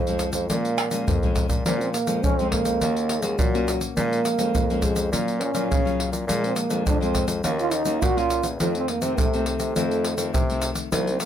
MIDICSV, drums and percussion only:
0, 0, Header, 1, 4, 480
1, 0, Start_track
1, 0, Key_signature, -5, "minor"
1, 0, Tempo, 579151
1, 1370, Time_signature, 4, 2, 24, 8
1, 9326, End_track
2, 0, Start_track
2, 0, Title_t, "Pandeiro"
2, 57, Note_on_c, 9, 54, 33
2, 140, Note_off_c, 9, 54, 0
2, 158, Note_on_c, 9, 54, 65
2, 241, Note_off_c, 9, 54, 0
2, 271, Note_on_c, 9, 54, 59
2, 354, Note_off_c, 9, 54, 0
2, 412, Note_on_c, 9, 54, 73
2, 495, Note_off_c, 9, 54, 0
2, 538, Note_on_c, 9, 54, 30
2, 621, Note_off_c, 9, 54, 0
2, 646, Note_on_c, 9, 54, 67
2, 729, Note_off_c, 9, 54, 0
2, 756, Note_on_c, 9, 54, 59
2, 839, Note_off_c, 9, 54, 0
2, 893, Note_on_c, 9, 54, 79
2, 976, Note_off_c, 9, 54, 0
2, 1019, Note_on_c, 9, 54, 33
2, 1102, Note_off_c, 9, 54, 0
2, 1124, Note_on_c, 9, 54, 67
2, 1206, Note_off_c, 9, 54, 0
2, 1239, Note_on_c, 9, 54, 56
2, 1322, Note_off_c, 9, 54, 0
2, 1374, Note_on_c, 9, 54, 84
2, 1457, Note_off_c, 9, 54, 0
2, 1501, Note_on_c, 9, 54, 33
2, 1584, Note_off_c, 9, 54, 0
2, 1608, Note_on_c, 9, 54, 64
2, 1691, Note_off_c, 9, 54, 0
2, 1717, Note_on_c, 9, 54, 57
2, 1800, Note_off_c, 9, 54, 0
2, 1855, Note_on_c, 9, 54, 71
2, 1938, Note_off_c, 9, 54, 0
2, 1982, Note_on_c, 9, 54, 33
2, 2064, Note_off_c, 9, 54, 0
2, 2087, Note_on_c, 9, 54, 73
2, 2170, Note_off_c, 9, 54, 0
2, 2198, Note_on_c, 9, 54, 54
2, 2281, Note_off_c, 9, 54, 0
2, 2333, Note_on_c, 9, 54, 75
2, 2416, Note_off_c, 9, 54, 0
2, 2457, Note_on_c, 9, 54, 34
2, 2540, Note_off_c, 9, 54, 0
2, 2563, Note_on_c, 9, 54, 69
2, 2646, Note_off_c, 9, 54, 0
2, 2672, Note_on_c, 9, 54, 59
2, 2755, Note_off_c, 9, 54, 0
2, 2808, Note_on_c, 9, 54, 80
2, 2891, Note_off_c, 9, 54, 0
2, 2941, Note_on_c, 9, 54, 31
2, 3024, Note_off_c, 9, 54, 0
2, 3049, Note_on_c, 9, 54, 69
2, 3132, Note_off_c, 9, 54, 0
2, 3158, Note_on_c, 9, 54, 55
2, 3241, Note_off_c, 9, 54, 0
2, 3290, Note_on_c, 9, 54, 75
2, 3373, Note_off_c, 9, 54, 0
2, 3421, Note_on_c, 9, 54, 36
2, 3504, Note_off_c, 9, 54, 0
2, 3524, Note_on_c, 9, 54, 68
2, 3606, Note_off_c, 9, 54, 0
2, 3636, Note_on_c, 9, 54, 53
2, 3718, Note_off_c, 9, 54, 0
2, 3769, Note_on_c, 9, 54, 82
2, 3852, Note_off_c, 9, 54, 0
2, 3897, Note_on_c, 9, 54, 32
2, 3979, Note_off_c, 9, 54, 0
2, 3996, Note_on_c, 9, 54, 71
2, 4079, Note_off_c, 9, 54, 0
2, 4110, Note_on_c, 9, 54, 57
2, 4193, Note_off_c, 9, 54, 0
2, 4251, Note_on_c, 9, 54, 73
2, 4334, Note_off_c, 9, 54, 0
2, 4376, Note_on_c, 9, 54, 33
2, 4459, Note_off_c, 9, 54, 0
2, 4481, Note_on_c, 9, 54, 66
2, 4564, Note_off_c, 9, 54, 0
2, 4597, Note_on_c, 9, 54, 57
2, 4680, Note_off_c, 9, 54, 0
2, 4739, Note_on_c, 9, 54, 80
2, 4821, Note_off_c, 9, 54, 0
2, 4865, Note_on_c, 9, 54, 31
2, 4948, Note_off_c, 9, 54, 0
2, 4972, Note_on_c, 9, 54, 65
2, 5055, Note_off_c, 9, 54, 0
2, 5081, Note_on_c, 9, 54, 51
2, 5164, Note_off_c, 9, 54, 0
2, 5214, Note_on_c, 9, 54, 76
2, 5297, Note_off_c, 9, 54, 0
2, 5338, Note_on_c, 9, 54, 34
2, 5421, Note_off_c, 9, 54, 0
2, 5438, Note_on_c, 9, 54, 63
2, 5521, Note_off_c, 9, 54, 0
2, 5556, Note_on_c, 9, 54, 51
2, 5639, Note_off_c, 9, 54, 0
2, 5691, Note_on_c, 9, 54, 81
2, 5773, Note_off_c, 9, 54, 0
2, 5821, Note_on_c, 9, 54, 30
2, 5904, Note_off_c, 9, 54, 0
2, 5923, Note_on_c, 9, 54, 73
2, 6006, Note_off_c, 9, 54, 0
2, 6032, Note_on_c, 9, 54, 58
2, 6115, Note_off_c, 9, 54, 0
2, 6165, Note_on_c, 9, 54, 71
2, 6248, Note_off_c, 9, 54, 0
2, 6293, Note_on_c, 9, 54, 30
2, 6376, Note_off_c, 9, 54, 0
2, 6393, Note_on_c, 9, 54, 66
2, 6476, Note_off_c, 9, 54, 0
2, 6508, Note_on_c, 9, 54, 53
2, 6591, Note_off_c, 9, 54, 0
2, 6649, Note_on_c, 9, 54, 82
2, 6732, Note_off_c, 9, 54, 0
2, 6778, Note_on_c, 9, 54, 33
2, 6861, Note_off_c, 9, 54, 0
2, 6881, Note_on_c, 9, 54, 63
2, 6964, Note_off_c, 9, 54, 0
2, 6990, Note_on_c, 9, 54, 54
2, 7073, Note_off_c, 9, 54, 0
2, 7129, Note_on_c, 9, 54, 82
2, 7212, Note_off_c, 9, 54, 0
2, 7251, Note_on_c, 9, 54, 35
2, 7334, Note_off_c, 9, 54, 0
2, 7361, Note_on_c, 9, 54, 60
2, 7444, Note_off_c, 9, 54, 0
2, 7474, Note_on_c, 9, 54, 53
2, 7556, Note_off_c, 9, 54, 0
2, 7610, Note_on_c, 9, 54, 79
2, 7693, Note_off_c, 9, 54, 0
2, 7737, Note_on_c, 9, 54, 30
2, 7820, Note_off_c, 9, 54, 0
2, 7841, Note_on_c, 9, 54, 65
2, 7923, Note_off_c, 9, 54, 0
2, 7953, Note_on_c, 9, 54, 55
2, 8036, Note_off_c, 9, 54, 0
2, 8090, Note_on_c, 9, 54, 67
2, 8173, Note_off_c, 9, 54, 0
2, 8217, Note_on_c, 9, 54, 31
2, 8300, Note_off_c, 9, 54, 0
2, 8325, Note_on_c, 9, 54, 68
2, 8408, Note_off_c, 9, 54, 0
2, 8435, Note_on_c, 9, 54, 53
2, 8518, Note_off_c, 9, 54, 0
2, 8573, Note_on_c, 9, 54, 77
2, 8656, Note_off_c, 9, 54, 0
2, 8700, Note_on_c, 9, 54, 32
2, 8782, Note_off_c, 9, 54, 0
2, 8798, Note_on_c, 9, 54, 73
2, 8881, Note_off_c, 9, 54, 0
2, 8912, Note_on_c, 9, 54, 56
2, 8995, Note_off_c, 9, 54, 0
2, 9053, Note_on_c, 9, 54, 82
2, 9136, Note_off_c, 9, 54, 0
2, 9178, Note_on_c, 9, 54, 32
2, 9261, Note_off_c, 9, 54, 0
2, 9282, Note_on_c, 9, 54, 67
2, 9326, Note_off_c, 9, 54, 0
2, 9326, End_track
3, 0, Start_track
3, 0, Title_t, "Tamborim"
3, 646, Note_on_c, 9, 60, 90
3, 729, Note_off_c, 9, 60, 0
3, 9326, End_track
4, 0, Start_track
4, 0, Title_t, "Drums"
4, 57, Note_on_c, 9, 82, 32
4, 140, Note_off_c, 9, 82, 0
4, 158, Note_on_c, 9, 82, 66
4, 241, Note_off_c, 9, 82, 0
4, 271, Note_on_c, 9, 82, 82
4, 354, Note_off_c, 9, 82, 0
4, 412, Note_on_c, 9, 82, 74
4, 412, Note_on_c, 9, 87, 51
4, 495, Note_off_c, 9, 82, 0
4, 495, Note_off_c, 9, 87, 0
4, 538, Note_on_c, 9, 82, 29
4, 621, Note_off_c, 9, 82, 0
4, 646, Note_on_c, 9, 82, 70
4, 729, Note_off_c, 9, 82, 0
4, 756, Note_on_c, 9, 82, 80
4, 839, Note_off_c, 9, 82, 0
4, 893, Note_on_c, 9, 82, 73
4, 893, Note_on_c, 9, 87, 91
4, 976, Note_off_c, 9, 82, 0
4, 976, Note_off_c, 9, 87, 0
4, 1019, Note_on_c, 9, 82, 30
4, 1019, Note_on_c, 9, 87, 92
4, 1102, Note_off_c, 9, 82, 0
4, 1102, Note_off_c, 9, 87, 0
4, 1124, Note_on_c, 9, 82, 73
4, 1124, Note_on_c, 9, 87, 82
4, 1206, Note_off_c, 9, 82, 0
4, 1206, Note_off_c, 9, 87, 0
4, 1239, Note_on_c, 9, 82, 81
4, 1239, Note_on_c, 9, 87, 87
4, 1322, Note_off_c, 9, 82, 0
4, 1322, Note_off_c, 9, 87, 0
4, 1374, Note_on_c, 9, 82, 78
4, 1374, Note_on_c, 9, 87, 55
4, 1457, Note_off_c, 9, 82, 0
4, 1457, Note_off_c, 9, 87, 0
4, 1501, Note_on_c, 9, 82, 36
4, 1584, Note_off_c, 9, 82, 0
4, 1608, Note_on_c, 9, 82, 66
4, 1691, Note_off_c, 9, 82, 0
4, 1717, Note_on_c, 9, 82, 73
4, 1800, Note_off_c, 9, 82, 0
4, 1855, Note_on_c, 9, 82, 74
4, 1855, Note_on_c, 9, 87, 97
4, 1938, Note_off_c, 9, 82, 0
4, 1938, Note_off_c, 9, 87, 0
4, 1982, Note_on_c, 9, 82, 31
4, 2064, Note_off_c, 9, 82, 0
4, 2087, Note_on_c, 9, 87, 64
4, 2170, Note_off_c, 9, 87, 0
4, 2198, Note_on_c, 9, 82, 74
4, 2281, Note_off_c, 9, 82, 0
4, 2333, Note_on_c, 9, 82, 73
4, 2333, Note_on_c, 9, 87, 51
4, 2416, Note_off_c, 9, 82, 0
4, 2416, Note_off_c, 9, 87, 0
4, 2457, Note_on_c, 9, 82, 34
4, 2540, Note_off_c, 9, 82, 0
4, 2672, Note_on_c, 9, 82, 77
4, 2755, Note_off_c, 9, 82, 0
4, 2808, Note_on_c, 9, 82, 80
4, 2808, Note_on_c, 9, 87, 102
4, 2891, Note_off_c, 9, 82, 0
4, 2891, Note_off_c, 9, 87, 0
4, 2941, Note_on_c, 9, 82, 31
4, 3024, Note_off_c, 9, 82, 0
4, 3049, Note_on_c, 9, 82, 72
4, 3132, Note_off_c, 9, 82, 0
4, 3158, Note_on_c, 9, 82, 72
4, 3241, Note_off_c, 9, 82, 0
4, 3290, Note_on_c, 9, 82, 74
4, 3290, Note_on_c, 9, 87, 61
4, 3373, Note_off_c, 9, 82, 0
4, 3373, Note_off_c, 9, 87, 0
4, 3421, Note_on_c, 9, 82, 34
4, 3504, Note_off_c, 9, 82, 0
4, 3524, Note_on_c, 9, 82, 66
4, 3606, Note_off_c, 9, 82, 0
4, 3636, Note_on_c, 9, 82, 72
4, 3718, Note_off_c, 9, 82, 0
4, 3769, Note_on_c, 9, 82, 70
4, 3769, Note_on_c, 9, 87, 90
4, 3852, Note_off_c, 9, 82, 0
4, 3852, Note_off_c, 9, 87, 0
4, 3897, Note_on_c, 9, 82, 31
4, 3979, Note_off_c, 9, 82, 0
4, 3996, Note_on_c, 9, 82, 72
4, 3996, Note_on_c, 9, 87, 70
4, 4079, Note_off_c, 9, 82, 0
4, 4079, Note_off_c, 9, 87, 0
4, 4110, Note_on_c, 9, 82, 85
4, 4193, Note_off_c, 9, 82, 0
4, 4251, Note_on_c, 9, 82, 68
4, 4251, Note_on_c, 9, 87, 52
4, 4334, Note_off_c, 9, 82, 0
4, 4334, Note_off_c, 9, 87, 0
4, 4376, Note_on_c, 9, 82, 34
4, 4459, Note_off_c, 9, 82, 0
4, 4597, Note_on_c, 9, 82, 73
4, 4680, Note_off_c, 9, 82, 0
4, 4739, Note_on_c, 9, 82, 76
4, 4739, Note_on_c, 9, 87, 101
4, 4821, Note_off_c, 9, 82, 0
4, 4821, Note_off_c, 9, 87, 0
4, 4865, Note_on_c, 9, 82, 33
4, 4948, Note_off_c, 9, 82, 0
4, 5081, Note_on_c, 9, 82, 72
4, 5164, Note_off_c, 9, 82, 0
4, 5214, Note_on_c, 9, 82, 81
4, 5214, Note_on_c, 9, 87, 55
4, 5297, Note_off_c, 9, 82, 0
4, 5297, Note_off_c, 9, 87, 0
4, 5338, Note_on_c, 9, 82, 34
4, 5421, Note_off_c, 9, 82, 0
4, 5438, Note_on_c, 9, 82, 71
4, 5521, Note_off_c, 9, 82, 0
4, 5556, Note_on_c, 9, 82, 72
4, 5639, Note_off_c, 9, 82, 0
4, 5691, Note_on_c, 9, 82, 79
4, 5691, Note_on_c, 9, 87, 94
4, 5773, Note_off_c, 9, 82, 0
4, 5773, Note_off_c, 9, 87, 0
4, 5821, Note_on_c, 9, 82, 31
4, 5904, Note_off_c, 9, 82, 0
4, 5923, Note_on_c, 9, 82, 69
4, 5923, Note_on_c, 9, 87, 70
4, 6006, Note_off_c, 9, 82, 0
4, 6006, Note_off_c, 9, 87, 0
4, 6032, Note_on_c, 9, 82, 75
4, 6115, Note_off_c, 9, 82, 0
4, 6165, Note_on_c, 9, 82, 72
4, 6165, Note_on_c, 9, 87, 48
4, 6248, Note_off_c, 9, 82, 0
4, 6248, Note_off_c, 9, 87, 0
4, 6293, Note_on_c, 9, 82, 32
4, 6376, Note_off_c, 9, 82, 0
4, 6393, Note_on_c, 9, 82, 69
4, 6476, Note_off_c, 9, 82, 0
4, 6508, Note_on_c, 9, 82, 78
4, 6591, Note_off_c, 9, 82, 0
4, 6649, Note_on_c, 9, 82, 76
4, 6649, Note_on_c, 9, 87, 90
4, 6732, Note_off_c, 9, 82, 0
4, 6732, Note_off_c, 9, 87, 0
4, 6778, Note_on_c, 9, 82, 32
4, 6861, Note_off_c, 9, 82, 0
4, 6881, Note_on_c, 9, 82, 73
4, 6964, Note_off_c, 9, 82, 0
4, 6990, Note_on_c, 9, 82, 73
4, 7073, Note_off_c, 9, 82, 0
4, 7129, Note_on_c, 9, 82, 76
4, 7129, Note_on_c, 9, 87, 55
4, 7212, Note_off_c, 9, 82, 0
4, 7212, Note_off_c, 9, 87, 0
4, 7251, Note_on_c, 9, 82, 35
4, 7334, Note_off_c, 9, 82, 0
4, 7474, Note_on_c, 9, 82, 76
4, 7556, Note_off_c, 9, 82, 0
4, 7610, Note_on_c, 9, 82, 70
4, 7610, Note_on_c, 9, 87, 98
4, 7693, Note_off_c, 9, 82, 0
4, 7693, Note_off_c, 9, 87, 0
4, 7737, Note_on_c, 9, 82, 31
4, 7820, Note_off_c, 9, 82, 0
4, 7953, Note_on_c, 9, 82, 77
4, 8036, Note_off_c, 9, 82, 0
4, 8090, Note_on_c, 9, 82, 72
4, 8090, Note_on_c, 9, 87, 48
4, 8173, Note_off_c, 9, 82, 0
4, 8173, Note_off_c, 9, 87, 0
4, 8217, Note_on_c, 9, 82, 31
4, 8300, Note_off_c, 9, 82, 0
4, 8435, Note_on_c, 9, 82, 84
4, 8518, Note_off_c, 9, 82, 0
4, 8573, Note_on_c, 9, 82, 86
4, 8573, Note_on_c, 9, 87, 94
4, 8656, Note_off_c, 9, 82, 0
4, 8656, Note_off_c, 9, 87, 0
4, 8700, Note_on_c, 9, 82, 33
4, 8782, Note_off_c, 9, 82, 0
4, 8798, Note_on_c, 9, 82, 73
4, 8881, Note_off_c, 9, 82, 0
4, 8912, Note_on_c, 9, 82, 83
4, 8995, Note_off_c, 9, 82, 0
4, 9053, Note_on_c, 9, 82, 83
4, 9053, Note_on_c, 9, 87, 59
4, 9136, Note_off_c, 9, 82, 0
4, 9136, Note_off_c, 9, 87, 0
4, 9178, Note_on_c, 9, 82, 33
4, 9261, Note_off_c, 9, 82, 0
4, 9282, Note_on_c, 9, 82, 66
4, 9326, Note_off_c, 9, 82, 0
4, 9326, End_track
0, 0, End_of_file